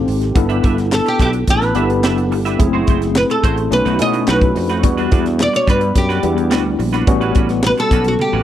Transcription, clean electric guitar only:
0.36 muted clean electric guitar stroke
0.49 D4 G4 B4 E5
0.63 D4 G4 B4 E5
0.77 muted clean electric guitar stroke
0.91 muted clean electric guitar stroke
1.06 muted clean electric guitar stroke
1.20 D4 G4 B4 E5
1.34 muted clean electric guitar stroke
1.62 muted clean electric guitar stroke
1.75 D4 G4 B4 E5
1.90 muted clean electric guitar stroke
2.03 D4 G4 B4 E5
2.18 muted clean electric guitar stroke
2.31 muted clean electric guitar stroke
2.45 D4 G4 B4 E5
2.59 muted clean electric guitar stroke
2.73 A3 E4 F#4 C5
2.88 A3 E4 F#4 C5
3.02 muted clean electric guitar stroke
3.16 muted clean electric guitar stroke
3.30 muted clean electric guitar stroke
3.43 A3 E4 F#4 C5
3.57 muted clean electric guitar stroke
3.72 muted clean electric guitar stroke
3.85 A3 D#4 F#4 B4
4.14 muted clean electric guitar stroke
4.28 A3 D#4 F#4 B4
4.42 muted clean electric guitar stroke
4.56 muted clean electric guitar stroke
4.70 A3 D#4 F#4 B4
4.84 muted clean electric guitar stroke
4.97 G3 D4 F#4 B4
5.11 G3 D4 F#4 B4
5.26 muted clean electric guitar stroke
5.40 muted clean electric guitar stroke
5.53 muted clean electric guitar stroke
5.67 G3 D4 F#4 B4
5.81 muted clean electric guitar stroke
5.95 muted clean electric guitar stroke
6.09 G3 D4 F#4 B4
6.23 muted clean electric guitar stroke
6.37 muted clean electric guitar stroke
6.50 G3 D4 F#4 B4
6.65 muted clean electric guitar stroke
6.79 muted clean electric guitar stroke
6.93 G3 D4 F#4 B4
7.07 muted clean electric guitar stroke
7.21 G3 C#4 F#4 B4
7.35 G3 C#4 F#4 B4
7.49 muted clean electric guitar stroke
7.63 muted clean electric guitar stroke
7.78 muted clean electric guitar stroke
7.91 G3 C#4 F#4 B4
8.05 muted clean electric guitar stroke
8.19 muted clean electric guitar stroke
8.33 G3 C#4 F#4 B4

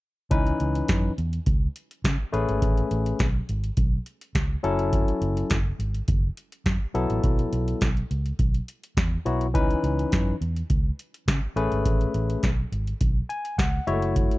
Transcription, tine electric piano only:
0.31 E3 C#4 D#4 B4
2.32 A3 C#4 G#4 B4
4.63 F#3 C#4 E4 A4
6.94 F#3 B3 E4 A4
9.25 F#3 B3 E4 F#4
9.54 E3 C#4 D#4 B4
11.56 A3 C#4 G#4 B4
13.29 G#5
13.58 F#5
13.87 G#3 E4 F#4 C#5 E5
13.93 A3

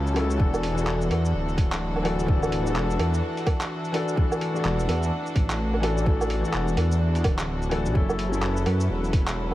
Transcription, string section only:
Already playing: F#3 C#4 E4 A4
0.40 E3 D4 F#4
7.95 F#3 C#4 E4 A4

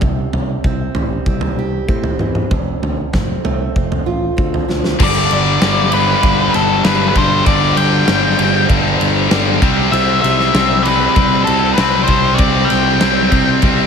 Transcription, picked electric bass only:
0.02 C2
0.34 C2
0.64 C2
0.95 A1
1.26 C2
1.56 C2
1.88 A2
2.19 E2
2.52 F1
2.82 D2
3.14 F1
3.45 C2
3.76 F1
4.07 A1
4.38 D2
4.70 D2
5.00 G1
5.31 G1
5.62 G1
6.23 G1
6.55 G1
6.86 G1
7.16 G1
7.46 G1
7.76 G1
8.08 G1
8.39 G1
8.70 G1
9.01 G1
9.31 G1
9.62 C2
9.92 C2
10.24 C2
10.54 C2
11.17 C2
11.48 C2
11.79 C2
12.08 C2
12.39 C2
12.72 C2
13.02 C2
13.32 C2
13.63 C2

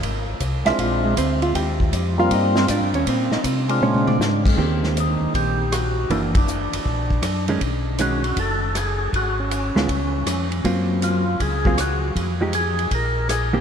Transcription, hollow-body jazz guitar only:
0.66 E4 E5
0.80 F4 F5
1.05 G#3 G#4
1.18 C4 C5
1.42 F4 F5
1.56 G4 G5
2.19 F4 F5
2.33 D#4 D#5
2.57 C4 C5
2.71 D4 D5
2.95 C#4 C#5
3.09 C4 C5
3.32 D#4 D#5
3.83 C#4 C#5
4.07 D4 D5
4.58 D#3 A#3 C4 G4
6.11 E3 A#3 D4
7.49 D#3 G#3 C#4
7.99 D#3 G#3 C#4
9.76 G#3 B3 F4
10.65 F#3 A#3 C4 F4
11.66 F#3 A#3 C4 F4
12.41 F3 G#3 D#4 G4
13.53 D#3 A#3 C4 G4

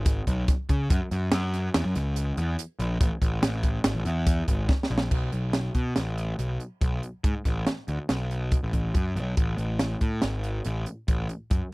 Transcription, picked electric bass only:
Already playing: G#1
0.27 B1
0.70 C#3
0.90 F#2
1.11 F#2
1.33 F#2
1.75 E2
1.85 F#2
1.96 C#2
2.38 E2
2.79 A#1
3.01 A1
3.22 A1
3.42 A1
3.84 G#1
3.95 A1
4.05 E2
4.48 G#1
4.90 A#1
5.11 B1
5.33 B1
5.75 B2
5.97 A1
6.39 B1
6.82 B1
7.24 G#2
7.45 A1
7.88 D2
8.09 B1
8.63 A1
8.73 A1
8.95 F#2
9.16 B1
9.38 A1
9.58 A1
10.01 A2
10.23 G#1
10.66 A1
11.08 A1
11.51 F#2

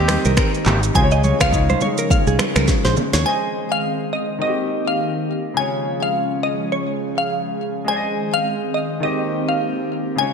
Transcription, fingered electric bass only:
Already playing: D#2
0.25 C2
0.66 G#1
0.95 C#2
1.41 C#2
2.27 C2
2.56 C#2
2.85 A#1
3.14 D#2

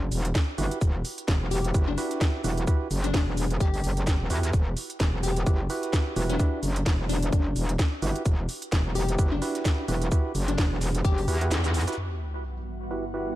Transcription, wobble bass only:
0.12 E1
0.58 G1
0.81 E1
1.28 E1
1.74 F#1
2.44 E1
2.91 F#1
3.14 E1
3.60 G1
3.84 F#1
4.20 E1
4.30 E2
4.53 E1
5.00 E1
5.46 F#1
6.16 E1
6.63 F#1
6.86 E1
7.33 F#1
7.56 E1
8.02 G1
8.26 E1
8.72 E1
9.19 F#1
9.88 E1
10.35 F#1
10.58 E1
11.05 F#1
11.28 E2
11.51 E2

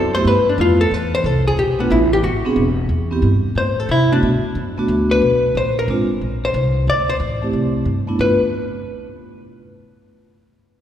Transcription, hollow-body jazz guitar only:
Already playing: A4
0.15 C5
0.27 B4
0.49 D4
0.61 F4
0.81 A4
0.94 B4
1.15 C5
1.26 A4
1.48 G#4
1.59 G4
1.80 B3
1.92 E4
2.13 G4
2.24 F#4
3.58 C5
3.80 A4
3.91 E4
4.12 D4
5.11 B4
5.57 C5
5.79 A#4
6.45 C5
6.90 D5
7.09 C5
8.21 B4

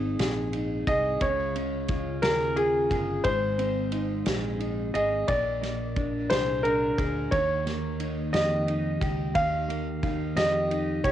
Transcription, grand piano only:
Already playing: G#4
0.87 D#5
1.22 C#5
2.22 A#4
2.56 G#4
3.24 C5
4.94 D#5
5.28 D5
6.30 C5
6.63 A#4
7.31 C#5
8.33 D#5
9.35 F5
10.37 D#5
11.04 C#5

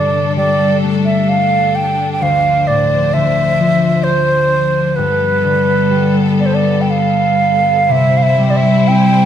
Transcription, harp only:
Already playing: G2 D3 E4 G4
0.37 G3
0.84 A3
2.21 D2
2.69 A2
3.14 D3
3.60 F3
4.98 G2
5.44 D3
5.91 G3
6.38 B3
7.89 C3
8.38 G3
8.88 C4

